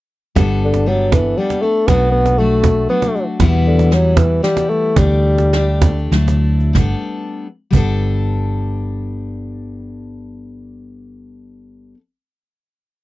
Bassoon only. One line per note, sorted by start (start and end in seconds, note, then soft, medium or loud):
0.64 0.89 D3 medium
0.88 1.14 F#3 medium
1.13 1.39 E3 medium
1.38 1.63 G3 medium
1.62 1.89 A3 medium
1.87 2.11 B3 medium
2.11 2.40 B3 medium
2.38 2.89 A3 medium
2.89 3.25 B3 medium
3.67 3.95 D3 medium
3.93 4.19 F#3 medium
4.18 4.42 E3 medium
4.43 4.71 G3 medium
4.70 5.00 A3 medium
4.99 6.13 G3 medium